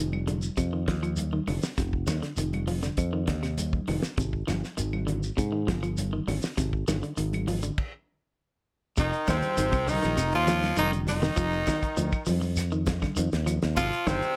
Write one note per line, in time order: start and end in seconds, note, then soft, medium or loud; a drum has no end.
0.00 0.48 F1 medium
0.00 0.16 D#3 medium
0.12 high conga medium
0.12 claves medium
0.27 0.46 D3 medium
0.27 closed hi-hat soft
0.27 high conga medium
0.27 low conga medium
0.27 shekere soft
0.42 shekere medium
0.57 0.88 F2 medium
0.57 0.67 C3 medium
0.57 kick medium
0.57 closed hi-hat medium
0.57 claves medium
0.57 shekere medium
0.73 0.82 D#3 medium
0.88 1.39 D#2 medium
0.88 0.98 F3 medium
0.88 kick medium
0.88 snare medium
0.88 closed hi-hat soft
1.03 1.22 F3 medium
1.03 closed hi-hat soft
1.03 claves medium
1.03 shekere soft
1.17 closed hi-hat medium
1.17 high conga medium
1.17 shekere medium
1.32 1.42 D#3 medium
1.32 high conga medium
1.47 1.61 F1 medium
1.47 1.67 D3 medium
1.47 open hi-hat medium
1.47 high conga medium
1.47 low conga medium
1.47 claves medium
1.47 shekere soft
1.62 snare medium
1.62 shekere medium
1.77 2.04 F1 medium
1.77 1.97 C3 medium
1.77 kick medium
1.77 snare soft
1.77 closed hi-hat medium
1.77 high conga soft
1.77 shekere medium
1.93 kick medium
2.07 2.20 D#2 medium
2.07 2.17 D#3 medium
2.07 snare medium
2.07 closed hi-hat soft
2.07 high conga medium
2.07 claves medium
2.07 shekere medium
2.22 2.32 D3 medium
2.22 snare soft
2.22 closed hi-hat soft
2.22 shekere soft
2.37 2.89 F1 medium
2.37 2.57 D#3 medium
2.37 closed hi-hat medium
2.37 high conga soft
2.37 shekere medium
2.53 closed hi-hat soft
2.53 high conga medium
2.53 claves medium
2.67 2.77 F3 medium
2.67 open hi-hat medium
2.67 high conga medium
2.67 low conga medium
2.67 shekere soft
2.83 3.02 D3 medium
2.83 snare soft
2.83 closed hi-hat soft
2.83 shekere medium
2.97 3.28 F2 medium
2.97 kick medium
2.97 closed hi-hat medium
2.97 high conga soft
2.97 claves medium
2.97 shekere medium
3.13 3.22 D#3 medium
3.27 3.79 D#2 medium
3.27 3.37 D3 medium
3.27 kick medium
3.27 snare medium
3.27 closed hi-hat medium
3.43 3.62 C3 medium
3.43 snare soft
3.43 closed hi-hat soft
3.43 claves medium
3.43 shekere soft
3.58 closed hi-hat medium
3.58 high conga medium
3.58 shekere medium
3.73 kick medium
3.73 high conga medium
3.87 4.02 F1 medium
3.87 4.07 D#3 medium
3.87 open hi-hat medium
3.87 high conga medium
3.87 low conga medium
3.87 claves medium
3.87 shekere soft
4.02 muted fingered electric bass stroke soft
4.02 snare medium
4.02 closed hi-hat soft
4.02 shekere medium
4.17 4.43 G#1 medium
4.17 4.37 C3 medium
4.17 kick medium
4.17 closed hi-hat medium
4.17 high conga soft
4.17 shekere medium
4.33 kick medium
4.47 4.61 G1 medium
4.47 4.66 F3 medium
4.47 snare medium
4.47 closed hi-hat soft
4.47 high conga medium
4.47 claves medium
4.47 shekere medium
4.64 snare soft
4.64 shekere soft
4.77 5.29 G#1 medium
4.77 4.96 D#3 medium
4.77 closed hi-hat medium
4.77 high conga soft
4.77 shekere medium
4.93 high conga medium
4.93 claves medium
5.07 5.26 D3 medium
5.07 closed hi-hat soft
5.07 low conga medium
5.07 shekere soft
5.23 shekere medium
5.37 5.70 G#2 medium
5.37 5.47 C3 medium
5.37 kick medium
5.37 closed hi-hat medium
5.37 claves medium
5.37 shekere medium
5.52 5.62 D#3 medium
5.67 6.19 G1 medium
5.67 5.77 F3 medium
5.67 kick medium
5.67 snare medium
5.67 closed hi-hat soft
5.83 6.02 F3 medium
5.83 closed hi-hat soft
5.83 claves medium
5.83 shekere soft
5.98 closed hi-hat medium
5.98 high conga medium
5.98 shekere medium
6.13 6.22 D#3 medium
6.28 6.41 G#1 medium
6.28 6.47 D3 medium
6.28 open hi-hat medium
6.28 high conga medium
6.28 low conga medium
6.28 claves medium
6.28 shekere soft
6.42 snare medium
6.42 shekere medium
6.57 6.84 G#1 medium
6.57 6.76 C3 medium
6.57 kick medium
6.57 snare soft
6.57 closed hi-hat medium
6.57 high conga soft
6.57 shekere medium
6.73 kick medium
6.88 7.01 G1 medium
6.88 6.97 D#3 medium
6.88 snare medium
6.88 closed hi-hat soft
6.88 high conga loud
6.88 claves medium
6.88 shekere medium
7.02 7.12 D3 medium
7.02 closed hi-hat soft
7.02 shekere soft
7.17 7.69 G#1 medium
7.17 7.36 D#3 medium
7.17 closed hi-hat medium
7.17 high conga soft
7.17 shekere medium
7.33 closed hi-hat soft
7.33 high conga medium
7.33 claves medium
7.47 7.57 F3 medium
7.47 open hi-hat medium
7.47 high conga medium
7.47 low conga medium
7.47 shekere soft
7.62 7.82 D3 medium
7.62 closed hi-hat soft
7.62 shekere medium
7.78 kick medium
7.78 crash medium
8.97 9.11 F1 loud
8.97 9.16 C3 medium
8.97 9.27 D#3 medium
8.97 9.27 D#4 medium
8.97 kick loud
8.97 closed hi-hat medium
8.97 shekere medium
9.12 closed hi-hat soft
9.12 shekere soft
9.27 9.41 D#2 medium
9.27 9.92 C3 medium
9.27 9.46 D#3 medium
9.27 9.90 C4 medium
9.27 kick medium
9.27 snare medium
9.27 closed hi-hat soft
9.27 high conga loud
9.27 claves medium
9.27 shekere medium
9.42 closed hi-hat soft
9.42 high conga medium
9.42 low conga medium
9.42 shekere soft
9.57 9.71 G#1 loud
9.57 9.67 D#3 medium
9.57 closed hi-hat medium
9.57 shekere medium
9.72 9.98 C2 medium
9.72 9.81 C3 medium
9.72 kick medium
9.72 closed hi-hat soft
9.72 claves medium
9.72 shekere soft
9.87 9.97 D3 medium
9.87 10.34 D#3 medium
9.87 10.33 D#4 loud
9.87 open hi-hat medium
9.87 high conga medium
9.87 low conga medium
9.87 shekere medium
10.02 10.17 A#1 loud
10.02 10.12 D#3 medium
10.02 snare soft
10.02 closed hi-hat soft
10.02 shekere soft
10.17 10.31 F1 medium
10.17 10.36 C3 medium
10.17 closed hi-hat medium
10.17 claves medium
10.17 shekere medium
10.32 10.72 D#2 medium
10.32 10.76 F3 medium
10.32 10.76 F4 loud
10.32 closed hi-hat soft
10.32 shekere soft
10.47 10.66 F3 medium
10.47 snare medium
10.47 closed hi-hat medium
10.47 high conga medium
10.47 shekere medium
10.62 snare soft
10.62 closed hi-hat soft
10.62 high conga medium
10.62 claves medium
10.62 shekere soft
10.77 11.29 F1 medium
10.77 10.86 D#3 medium
10.77 10.92 D#3 medium
10.77 10.92 D#4 medium
10.77 closed hi-hat medium
10.77 high conga medium
10.77 shekere medium
10.92 11.11 D3 medium
10.92 closed hi-hat soft
10.92 shekere soft
11.07 12.24 D#3 medium
11.07 12.24 D#4 loud
11.07 snare soft
11.07 open hi-hat medium
11.07 high conga medium
11.07 low conga medium
11.07 claves medium
11.07 shekere medium
11.22 11.31 D#3 medium
11.22 snare medium
11.22 shekere soft
11.36 11.63 F1 loud
11.36 11.55 F3 medium
11.36 kick medium
11.36 closed hi-hat medium
11.36 shekere medium
11.52 shekere soft
11.67 11.86 D#3 medium
11.67 kick medium
11.67 snare medium
11.67 closed hi-hat soft
11.67 high conga loud
11.67 claves medium
11.67 shekere medium
11.82 kick medium
11.82 closed hi-hat soft
11.82 shekere soft
11.97 12.10 D2 medium
11.97 12.16 F3 medium
11.97 closed hi-hat medium
11.97 shekere medium
12.12 kick medium
12.12 claves medium
12.12 shekere soft
12.26 13.04 F2 medium
12.26 12.36 F3 medium
12.26 open hi-hat medium
12.26 high conga medium
12.26 low conga medium
12.26 shekere medium
12.41 muted clean electric guitar stroke medium
12.41 shekere soft
12.56 snare soft
12.56 closed hi-hat medium
12.56 claves medium
12.56 shekere medium
12.72 12.91 D#3 medium
12.72 shekere soft
12.86 kick medium
12.86 snare medium
12.86 closed hi-hat medium
12.86 high conga medium
12.86 shekere medium
13.02 13.11 D3 medium
13.02 kick medium
13.02 snare soft
13.02 high conga medium
13.02 claves medium
13.02 shekere soft
13.16 13.31 F2 medium
13.16 13.35 D#3 medium
13.16 closed hi-hat medium
13.16 shekere medium
13.32 13.58 D#2 medium
13.32 snare medium
13.32 closed hi-hat soft
13.32 shekere soft
13.46 13.65 F3 medium
13.46 closed hi-hat medium
13.46 low conga medium
13.46 claves medium
13.46 shekere medium
13.62 13.76 D#2 medium
13.62 snare medium
13.62 closed hi-hat soft
13.62 shekere soft
13.76 13.90 G#1 loud
13.76 13.96 C3 medium
13.76 14.09 F3 loud
13.76 14.09 F4 loud
13.76 kick loud
13.76 closed hi-hat medium
13.76 shekere medium
13.92 closed hi-hat soft
13.92 shekere soft
14.07 14.20 G1 medium
14.07 14.36 C3 medium
14.07 14.25 D#3 medium
14.07 14.36 C4 loud
14.07 kick medium
14.07 snare medium
14.07 closed hi-hat soft
14.07 high conga loud
14.07 claves medium
14.07 shekere medium
14.22 closed hi-hat soft
14.22 low conga medium
14.22 shekere soft